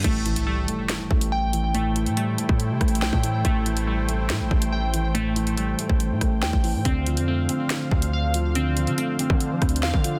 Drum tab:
CC |x-----------------------------------------------|------------------------------------------------|------------------------------------------------|------------------------------------------------|
HH |x-----x--x--------x-----x--------x--------x-----|x-----x--x--x-----x-----x-----x-x-x-------x-----|x-----x--x--------x-----x--------x--------x-----|x-----x--x--x-----x-----x-----x-----------o-----|
SD |------------------------o-----------------------|------------------------------r-----o-----------|------------------------o-----------------------|------------------------------r-----o-----------|
BD |o-----------------------------o-----------------|---------------------o--------o--------o--------|o-----------------------------o-----------------|---------------------o--------o--------o--------|

CC |------------------------------------------------|------------------------------------------------|
HH |x-----x--x--------x-----x--------x--------x-----|x-----x--x--x-----x-----x-----x-x-x-------x-----|
SD |------------------------o-----------------------|------------------------------r-----o-----------|
BD |o-----------------------------o-----------------|---------------------o--------o--------o--------|